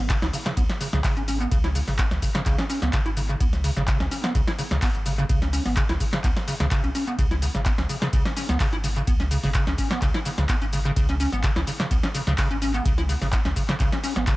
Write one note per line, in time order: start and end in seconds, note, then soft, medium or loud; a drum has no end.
0.00 0.15 G#1 medium
0.10 0.17 C#3 loud
0.10 kick loud
0.10 clap loud
0.10 closed hi-hat medium
0.10 ride medium
0.10 shaker soft
0.22 0.30 C#2 medium
0.22 0.26 E4 loud
0.22 snare medium
0.22 closed hi-hat soft
0.22 shaker soft
0.33 0.38 C#3 medium
0.33 open hi-hat loud
0.33 shaker medium
0.46 0.52 C#3 medium
0.46 snare medium
0.46 closed hi-hat soft
0.46 shaker soft
0.57 0.66 C#2 loud
0.57 0.64 B3 medium
0.57 kick loud
0.57 closed hi-hat medium
0.57 ride medium
0.57 shaker soft
0.69 snare medium
0.69 closed hi-hat soft
0.69 shaker soft
0.81 0.88 C#3 medium
0.81 open hi-hat loud
0.81 shaker medium
0.93 1.01 C#2 loud
0.93 0.99 C#3 loud
0.93 snare medium
0.93 shaker soft
1.04 1.15 C#3 loud
1.04 kick loud
1.04 clap loud
1.04 open hi-hat medium
1.04 ride medium
1.04 shaker soft
1.17 1.46 G#1 medium
1.17 1.23 C#4 medium
1.17 closed hi-hat soft
1.17 shaker soft
1.28 1.38 C#4 medium
1.28 open hi-hat loud
1.28 shaker medium
1.40 1.50 B3 medium
1.40 closed hi-hat soft
1.40 shaker soft
1.52 1.82 C#2 loud
1.52 1.58 C#3 loud
1.52 kick loud
1.52 closed hi-hat medium
1.52 ride medium
1.52 shaker soft
1.64 1.68 E4 loud
1.64 snare soft
1.64 closed hi-hat soft
1.64 shaker soft
1.75 1.79 C#3 medium
1.75 open hi-hat loud
1.75 shaker medium
1.88 2.04 G#1 medium
1.88 1.94 C#3 medium
1.88 snare soft
1.88 open hi-hat medium
1.88 shaker soft
1.99 2.06 B3 medium
1.99 kick loud
1.99 clap loud
1.99 closed hi-hat medium
1.99 ride medium
1.99 shaker soft
2.11 2.19 C#2 medium
2.11 snare medium
2.11 closed hi-hat soft
2.11 shaker soft
2.22 2.29 C#3 medium
2.22 kick medium
2.22 open hi-hat loud
2.22 shaker medium
2.35 2.41 C#3 loud
2.35 snare medium
2.35 closed hi-hat soft
2.35 shaker soft
2.46 2.55 C#2 loud
2.46 2.56 C#3 loud
2.46 kick loud
2.46 clap medium
2.46 closed hi-hat medium
2.46 ride medium
2.46 shaker soft
2.58 2.65 C#4 medium
2.58 snare medium
2.58 closed hi-hat soft
2.58 shaker soft
2.70 2.80 C#4 medium
2.70 open hi-hat loud
2.70 shaker medium
2.82 2.90 C#2 loud
2.82 2.91 B3 medium
2.82 snare medium
2.82 closed hi-hat soft
2.82 shaker soft
2.93 3.00 C#3 loud
2.93 kick loud
2.93 clap loud
2.93 closed hi-hat medium
2.93 ride medium
2.93 shaker soft
3.06 3.35 G#1 medium
3.06 3.09 E4 loud
3.06 closed hi-hat soft
3.06 shaker soft
3.17 3.21 C#3 medium
3.17 open hi-hat loud
3.17 shaker medium
3.29 3.35 C#3 medium
3.29 closed hi-hat soft
3.29 shaker soft
3.40 3.71 C#2 loud
3.40 3.47 B3 medium
3.40 kick loud
3.40 closed hi-hat medium
3.40 ride medium
3.40 shaker soft
3.53 snare soft
3.53 closed hi-hat soft
3.53 shaker soft
3.64 3.71 C#3 medium
3.64 open hi-hat loud
3.64 shaker medium
3.77 3.93 G#1 medium
3.77 3.83 C#3 loud
3.77 snare soft
3.77 shaker soft
3.88 3.98 C#3 loud
3.88 kick loud
3.88 clap loud
3.88 closed hi-hat medium
3.88 ride medium
3.88 shaker soft
4.00 4.08 C#2 medium
4.00 4.06 C#4 medium
4.00 snare medium
4.00 closed hi-hat soft
4.00 shaker soft
4.11 4.22 C#4 medium
4.11 open hi-hat loud
4.11 shaker medium
4.24 4.33 B3 medium
4.24 snare medium
4.24 closed hi-hat soft
4.24 shaker soft
4.35 4.44 C#2 loud
4.35 4.42 C#3 loud
4.35 kick loud
4.35 closed hi-hat medium
4.35 ride medium
4.35 shaker soft
4.47 4.51 E4 loud
4.47 snare medium
4.47 closed hi-hat soft
4.47 shaker soft
4.59 4.63 C#3 medium
4.59 open hi-hat loud
4.59 shaker medium
4.71 4.79 C#2 medium
4.71 4.77 C#3 medium
4.71 snare medium
4.71 closed hi-hat soft
4.71 shaker soft
4.82 4.89 B3 medium
4.82 kick loud
4.82 clap loud
4.82 open hi-hat medium
4.82 ride medium
4.82 shaker soft
4.95 5.24 G#1 medium
4.95 closed hi-hat soft
4.95 shaker soft
5.06 5.13 C#3 medium
5.06 open hi-hat loud
5.06 shaker medium
5.18 5.24 C#3 loud
5.18 closed hi-hat soft
5.18 shaker soft
5.29 5.60 C#2 loud
5.29 5.40 C#3 loud
5.29 kick loud
5.29 closed hi-hat medium
5.29 ride medium
5.29 shaker soft
5.42 5.48 C#4 medium
5.42 snare soft
5.42 closed hi-hat soft
5.42 shaker soft
5.53 5.63 C#4 medium
5.53 open hi-hat loud
5.53 shaker medium
5.66 5.82 G#1 loud
5.66 5.75 B3 medium
5.66 snare soft
5.66 open hi-hat medium
5.66 shaker soft
5.77 5.84 C#3 loud
5.77 kick loud
5.77 clap loud
5.77 closed hi-hat medium
5.77 ride medium
5.77 shaker soft
5.89 5.97 C#2 medium
5.89 5.93 E4 loud
5.89 snare medium
5.89 closed hi-hat soft
5.89 shaker soft
6.00 6.04 C#3 medium
6.00 kick medium
6.00 open hi-hat loud
6.00 shaker medium
6.13 6.19 C#3 medium
6.13 snare medium
6.13 closed hi-hat soft
6.13 shaker soft
6.24 6.33 C#2 loud
6.24 6.31 B3 medium
6.24 kick loud
6.24 clap medium
6.24 closed hi-hat medium
6.24 ride medium
6.24 shaker soft
6.36 snare medium
6.36 closed hi-hat soft
6.36 shaker soft
6.48 6.54 C#3 medium
6.48 open hi-hat loud
6.48 shaker medium
6.60 6.68 C#2 loud
6.60 6.66 C#3 loud
6.60 snare medium
6.60 shaker soft
6.71 6.82 C#3 loud
6.71 kick loud
6.71 clap loud
6.71 closed hi-hat medium
6.71 ride medium
6.71 shaker soft
6.84 6.92 B1 loud
6.84 6.90 C#4 medium
6.84 closed hi-hat soft
6.84 shaker soft
6.95 7.05 C#4 medium
6.95 open hi-hat loud
6.95 shaker medium
7.07 7.17 B3 medium
7.07 closed hi-hat soft
7.07 shaker soft
7.19 7.49 C#2 loud
7.19 7.25 C#3 loud
7.19 kick loud
7.19 closed hi-hat medium
7.19 ride medium
7.19 shaker soft
7.31 7.35 E4 loud
7.31 snare soft
7.31 closed hi-hat soft
7.31 shaker soft
7.42 7.46 C#3 medium
7.42 open hi-hat loud
7.42 shaker medium
7.55 7.71 G#1 loud
7.55 7.61 C#3 medium
7.55 snare soft
7.55 closed hi-hat soft
7.55 shaker soft
7.66 7.73 B3 medium
7.66 kick loud
7.66 clap loud
7.66 closed hi-hat medium
7.66 ride medium
7.66 shaker soft
7.78 7.86 C#2 medium
7.78 7.82 C#4 medium
7.78 snare medium
7.78 closed hi-hat soft
7.78 shaker soft
7.89 7.96 C#3 medium
7.89 open hi-hat loud
7.89 shaker medium
8.02 8.08 C#3 loud
8.02 snare medium
8.02 closed hi-hat soft
8.02 shaker soft
8.13 8.22 C#2 medium
8.13 8.23 C#3 loud
8.13 kick loud
8.13 closed hi-hat medium
8.13 ride medium
8.13 shaker soft
8.25 8.32 C#4 medium
8.25 snare medium
8.25 closed hi-hat soft
8.25 shaker soft
8.37 8.47 C#4 medium
8.37 open hi-hat loud
8.37 shaker medium
8.49 8.57 C#2 loud
8.49 8.58 B3 medium
8.49 snare medium
8.49 closed hi-hat soft
8.49 shaker soft
8.60 8.67 C#3 loud
8.60 kick loud
8.60 clap loud
8.60 open hi-hat medium
8.60 ride medium
8.60 shaker soft
8.73 9.02 G#1 medium
8.73 8.76 E4 loud
8.73 closed hi-hat soft
8.73 shaker soft
8.84 8.88 C#3 medium
8.84 open hi-hat loud
8.84 shaker medium
8.96 9.02 C#3 medium
8.96 closed hi-hat soft
8.96 shaker soft
9.07 9.38 C#2 loud
9.07 9.14 B3 medium
9.07 kick loud
9.07 closed hi-hat medium
9.07 ride medium
9.07 shaker soft
9.20 9.24 C#4 medium
9.20 snare soft
9.20 closed hi-hat soft
9.20 shaker soft
9.31 9.38 C#3 medium
9.31 open hi-hat loud
9.31 shaker medium
9.43 9.60 G#1 medium
9.43 9.50 C#3 loud
9.43 snare soft
9.43 open hi-hat medium
9.43 shaker soft
9.54 9.65 C#3 loud
9.54 kick loud
9.54 clap loud
9.54 closed hi-hat medium
9.54 ride medium
9.54 shaker soft
9.67 9.75 C#2 medium
9.67 9.73 C#4 medium
9.67 snare medium
9.67 closed hi-hat soft
9.67 shaker soft
9.78 9.89 C#4 medium
9.78 kick medium
9.78 open hi-hat loud
9.78 shaker medium
9.91 10.00 B3 medium
9.91 snare medium
9.91 closed hi-hat soft
9.91 shaker soft
10.02 10.11 C#2 loud
10.02 10.09 C#3 loud
10.02 kick loud
10.02 clap medium
10.02 closed hi-hat medium
10.02 ride medium
10.02 shaker soft
10.14 10.18 E4 loud
10.14 snare medium
10.14 closed hi-hat soft
10.14 shaker soft
10.25 10.30 C#3 medium
10.25 open hi-hat loud
10.25 shaker medium
10.38 10.46 C#2 loud
10.38 10.44 C#3 medium
10.38 snare medium
10.38 closed hi-hat soft
10.38 shaker soft
10.49 10.56 B3 medium
10.49 kick loud
10.49 clap loud
10.49 closed hi-hat medium
10.49 ride medium
10.49 shaker soft
10.62 10.91 G#1 medium
10.62 10.65 C#4 medium
10.62 closed hi-hat soft
10.62 shaker soft
10.73 10.80 C#3 medium
10.73 open hi-hat loud
10.73 shaker medium
10.85 10.91 C#3 loud
10.85 closed hi-hat soft
10.85 shaker soft
10.96 11.27 C#2 loud
10.96 11.07 C#3 loud
10.96 kick loud
10.96 closed hi-hat medium
10.96 ride medium
10.96 shaker soft
11.09 11.15 C#4 medium
11.09 snare soft
11.09 closed hi-hat soft
11.09 shaker soft
11.20 11.30 C#4 medium
11.20 open hi-hat loud
11.20 shaker medium
11.32 11.49 G#1 medium
11.32 11.42 B3 medium
11.32 snare soft
11.32 closed hi-hat soft
11.32 shaker soft
11.43 11.51 C#3 loud
11.43 kick loud
11.43 clap loud
11.43 closed hi-hat medium
11.43 ride medium
11.43 shaker soft
11.56 11.64 C#2 medium
11.56 11.60 E4 loud
11.56 snare medium
11.56 closed hi-hat soft
11.56 shaker soft
11.67 11.71 C#3 medium
11.67 open hi-hat loud
11.67 shaker medium
11.80 11.86 C#3 medium
11.80 snare medium
11.80 closed hi-hat soft
11.80 shaker soft
11.91 12.00 C#2 loud
11.91 11.98 B3 medium
11.91 kick loud
11.91 closed hi-hat medium
11.91 ride medium
11.91 shaker soft
12.03 12.07 C#4 medium
12.03 snare medium
12.03 closed hi-hat soft
12.03 shaker soft
12.15 12.21 C#3 medium
12.15 open hi-hat loud
12.15 shaker medium
12.27 12.35 C#2 loud
12.27 12.33 C#3 loud
12.27 snare medium
12.27 closed hi-hat soft
12.27 shaker soft
12.38 12.48 C#3 loud
12.38 kick loud
12.38 clap loud
12.38 open hi-hat medium
12.38 ride medium
12.38 shaker soft
12.51 12.80 G#1 medium
12.51 12.57 C#4 medium
12.51 closed hi-hat soft
12.51 shaker soft
12.62 12.72 C#4 medium
12.62 open hi-hat loud
12.62 shaker medium
12.74 12.83 B3 medium
12.74 closed hi-hat soft
12.74 shaker soft
12.85 13.16 C#2 loud
12.85 12.92 C#3 loud
12.85 kick loud
12.85 closed hi-hat medium
12.85 ride medium
12.85 shaker soft
12.98 13.02 E4 loud
12.98 snare soft
12.98 closed hi-hat soft
12.98 shaker soft
13.09 13.13 C#3 medium
13.09 open hi-hat loud
13.09 shaker medium
13.21 13.38 G#1 medium
13.21 13.28 C#3 medium
13.21 snare soft
13.21 open hi-hat medium
13.21 shaker soft
13.32 13.40 B3 medium
13.32 kick loud
13.32 clap loud
13.32 closed hi-hat medium
13.32 ride medium
13.32 shaker soft
13.45 13.53 C#2 medium
13.45 13.49 C#4 medium
13.45 snare medium
13.45 closed hi-hat soft
13.45 shaker soft
13.56 13.63 C#3 medium
13.56 kick medium
13.56 open hi-hat loud
13.56 shaker medium
13.69 13.75 C#3 loud
13.69 snare medium
13.69 closed hi-hat soft
13.69 shaker soft
13.80 13.89 C#2 loud
13.80 13.90 C#3 loud
13.80 kick loud
13.80 clap medium
13.80 closed hi-hat medium
13.80 ride medium
13.80 shaker soft
13.92 13.98 C#4 medium
13.92 snare medium
13.92 closed hi-hat soft
13.92 shaker soft
14.04 14.14 C#4 medium
14.04 open hi-hat loud
14.04 shaker medium
14.16 14.33 G#1 medium
14.16 14.25 B3 medium
14.16 snare medium
14.16 closed hi-hat soft
14.16 shaker soft
14.27 14.34 C#3 loud
14.27 kick loud
14.27 clap loud
14.27 closed hi-hat medium
14.27 ride medium
14.27 shaker soft